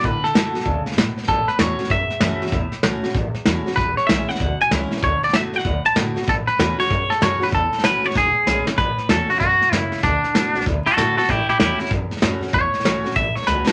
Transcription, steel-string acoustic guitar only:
0.03 0.32 D3 medium
0.34 0.53 D3 medium
0.34 0.54 A3 medium
0.34 0.54 B3 medium
0.34 0.52 F#4 medium
0.54 0.66 B3 soft
0.54 0.65 F#4 medium
0.66 0.96 C#3 medium
0.97 1.27 B2 medium
1.28 1.88 A2 loud
1.59 1.78 E3 medium
1.59 1.79 A3 medium
1.59 1.79 C#4 medium
1.59 1.78 F#4 loud
1.79 1.91 C#4 soft
1.79 1.90 F#4 medium
1.90 2.51 E2 medium
2.21 2.41 E3 medium
2.21 2.41 A3 medium
2.21 2.41 C#4 medium
2.21 2.41 F#4 loud
2.42 2.53 C#4 soft
2.42 2.53 F#4 medium
2.53 3.13 A2 medium
2.83 3.03 E3 medium
2.83 3.03 A3 medium
2.83 3.03 C#4 medium
2.83 3.02 F#4 medium
3.03 3.15 C#4 soft
3.03 3.14 F#4 medium
3.15 3.75 E2 medium
3.45 3.65 E3 medium
3.45 3.66 A3 medium
3.45 3.66 C#4 medium
3.45 3.65 F#4 medium
3.66 3.78 C#4 soft
3.66 3.77 F#4 medium
3.78 4.38 E2 medium
4.09 4.28 E3 medium
4.09 4.28 G#3 medium
4.09 4.29 C#4 medium
4.09 4.27 E4 medium
4.28 4.40 C#4 medium
4.28 4.39 E4 medium
4.41 5.01 B2 loud
4.72 4.91 E3 medium
4.72 4.91 G#3 medium
4.72 4.91 C#4 medium
4.72 4.89 E4 medium
4.91 5.03 C#4 soft
4.91 5.02 E4 medium
5.03 5.32 D3 medium
5.34 5.53 D3 medium
5.34 5.53 A3 medium
5.34 5.54 B3 medium
5.34 5.53 F#4 loud
5.54 5.66 B3 soft
5.54 5.65 F#4 medium
5.65 6.26 A2 loud
5.95 6.15 D3 medium
5.95 6.15 A3 medium
5.95 6.16 B3 medium
5.95 6.15 F#4 loud
6.16 6.28 B3 soft
6.16 6.27 F#4 medium
6.27 6.87 A2 medium
6.58 6.78 E3 medium
6.58 6.78 A3 medium
6.58 6.79 C#4 medium
6.58 6.77 F#4 loud
6.78 6.91 C#4 soft
6.78 6.90 F#4 medium
6.90 7.51 E2 medium
7.21 7.40 E3 medium
7.21 7.41 A3 medium
7.21 7.40 C#4 medium
7.21 7.39 F#4 loud
7.40 7.52 C#4 medium
7.40 7.52 F#4 medium
7.51 8.12 A2 medium
7.84 8.03 E3 medium
7.84 8.04 A3 medium
7.84 8.04 C#4 medium
7.84 8.02 F#4 loud
8.03 8.15 C#4 soft
8.03 8.14 F#4 medium
8.15 8.75 E2 loud
8.46 8.66 E3 medium
8.46 8.66 G#3 medium
8.46 8.66 C#4 medium
8.46 8.66 E4 medium
8.67 8.79 C#4 medium
8.67 8.78 E4 medium
8.78 9.38 A2 medium
9.09 9.28 E3 medium
9.09 9.29 A3 medium
9.09 9.29 C#4 medium
9.09 9.28 F#4 medium
9.29 9.41 C#4 medium
9.29 9.40 F#4 medium
9.41 9.71 B2 medium
9.72 10.02 C#3 medium
10.04 10.33 D3 medium
10.34 10.54 D3 medium
10.34 10.54 A3 medium
10.34 10.54 B3 medium
10.34 10.53 F#4 medium
10.54 10.66 B3 soft
10.54 10.65 F#4 medium
10.67 11.27 A2 loud
10.97 11.16 D3 medium
10.97 11.17 A3 medium
10.97 11.17 B3 medium
10.97 11.15 F#4 loud
11.17 11.29 B3 medium
11.17 11.28 F#4 medium
11.28 11.89 A2 medium
11.60 11.79 E3 medium
11.60 11.79 A3 medium
11.60 11.80 C#4 medium
11.60 11.78 F#4 medium
11.79 11.91 C#4 medium
11.79 11.90 F#4 medium
11.90 12.51 E2 medium
12.22 12.41 E3 medium
12.22 12.41 A3 medium
12.22 12.42 C#4 loud
12.22 12.40 F#4 loud
12.41 12.53 C#4 medium
12.41 12.52 F#4 medium
12.53 13.13 A2 medium
12.83 13.03 E3 medium
12.83 13.04 A3 medium
12.83 13.04 C#4 medium
12.83 13.03 F#4 medium
13.04 13.16 C#4 medium
13.04 13.15 F#4 medium
13.47 13.66 E3 medium
13.47 13.67 A3 medium
13.47 13.67 C#4 medium
13.47 13.65 F#4 medium
13.66 13.72 C#4 soft
13.66 13.72 F#4 medium

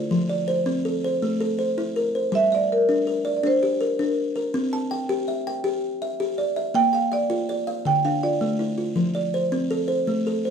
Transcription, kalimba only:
0.00 0.29 E4 medium
0.00 0.30 F4 medium
0.11 0.48 F3 medium
0.29 0.85 D5 medium
0.48 1.03 C5 medium
0.66 1.03 C4 medium
0.85 1.39 A4 medium
1.04 1.41 C5 medium
1.23 1.59 A3 medium
1.41 1.96 A4 medium
1.59 2.14 C5 medium
1.78 2.14 E4 medium
1.96 2.51 A#4 medium
2.15 2.51 C5 medium
2.32 2.69 G3 medium
2.52 3.07 E5 medium
2.89 3.25 D4 medium
3.07 3.62 A#4 medium
3.25 3.80 D5 medium
3.43 3.80 D4 medium
3.63 4.17 G4 medium
3.81 4.34 A#4 medium
3.99 4.36 D4 medium
4.36 4.72 A#4 medium
4.54 4.91 C4 loud
4.73 5.28 A5 medium
4.91 5.46 G5 medium
5.09 5.46 G4 medium
5.28 5.83 E5 medium
5.47 6.02 G5 medium
5.64 6.01 G4 medium
6.02 6.55 E5 medium
6.20 6.57 G4 medium
6.38 6.93 D5 medium
6.56 6.93 E5 medium
6.74 7.11 A#3 medium
6.93 7.48 G5 medium
7.12 7.66 F5 medium
7.30 7.67 F4 medium
7.49 8.04 D5 medium
7.67 8.04 F5 medium
7.85 8.22 D3 medium
8.05 8.60 D4 medium
8.23 8.77 F4 medium
8.41 8.78 A3 medium
8.59 9.14 E4 medium
8.78 9.15 F4 medium
8.96 9.33 F3 medium
9.15 9.70 D5 medium
9.34 9.87 C5 medium
9.52 9.89 C4 medium
9.71 10.26 A4 medium
9.88 10.25 C5 medium
10.07 10.44 A3 medium
10.27 10.50 A4 medium
10.45 10.50 C5 medium

